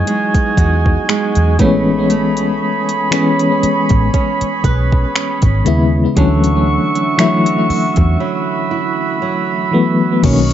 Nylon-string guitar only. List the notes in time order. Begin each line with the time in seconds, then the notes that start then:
Already playing: E3 D#4
0.07 G#3
0.58 F#4
1.09 G#3
1.60 A3
2.10 A3
3.12 C#4
4.14 C#4
4.65 B4
5.16 C#4
6.17 D3
7.19 F#3
8.20 F#3
8.71 E4
9.22 F#3